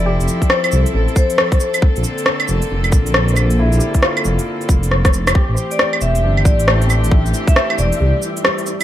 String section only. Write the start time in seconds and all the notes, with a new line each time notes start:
Already playing: F3 C4 E4 A4
1.81 D3 A#3
5.35 E3 A3 C4 G4